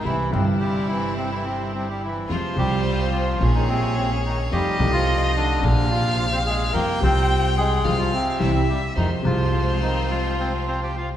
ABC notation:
X:1
M:4/4
L:1/16
Q:1/4=108
K:Fm
V:1 name="Violin"
z16 | c8 d8 | e8 f8 | g8 f4 =e4 |
c12- c2 z2 |]
V:2 name="Bandoneon"
[=E,=E]2 [C,C]2 [G,G]2 [E,E]2 [C,C] [E,E] [C,C]2 [C,C] [G,G] [E,E]2 | [F,F]2 [G,G]4 [F,F]3 [E,E] [C,C]2 [C,C] [D,D] [E,E]2 | [G,G]3 [F,F]3 [=D,=D]4 [F,F]2 [F,F] [Cc] [A,A]2 | [B,B]2 [Cc]4 [A,A]3 [F,F] [C,C]3 [C,C] [G,G]2 |
[E,E]2 [F,F]4 [E,E]2 [F,F]2 [Cc]2 [Cc] [Gg] [Ff]2 |]
V:3 name="String section"
[G,C=E]2 [G,CE]12- [G,CE]2 | [A,CF]2 [F,CF]6 [B,DA]8 | [=A,EF]2 [A,EF]6 [B,C=D]8 | [G,CF]2 [G,CF]6 [A,CF]2 z2 [G,C=E]2 z2 |
[A,CF]2 [A,CF]12- [A,CF]2 |]
V:4 name="Grand piano" clef=bass
[C,,C,=E,G,=E]2 [G,,,G,,C,E,G,E]12- [G,,,G,,C,E,G,E]2 | [F,,C,F,A,F]2 [C,,C,F,CF]6 [B,,,B,,D,A,B,F]8 | [F,,C,F,=A,E]2 [C,,C,F,A,E]6 [B,,,B,,C,F,B,=D]8 | [F,,C,F,G,F]2 [C,,C,F,G,F]6 [C,,C,F,A,F]2 z2 [C,,C,=E,G,=E]2 z2 |
[F,,C,F,A,F]2 [C,,C,F,A,F]12- [C,,C,F,A,F]2 |]
V:5 name="Upright bass" clef=bass
C,,2 G,,,12- G,,,2 | F,,2 C,,6 B,,,8 | F,,2 C,,6 B,,,8 | F,,2 C,,6 C,,2 z2 C,,2 z2 |
F,,2 C,,12- C,,2 |]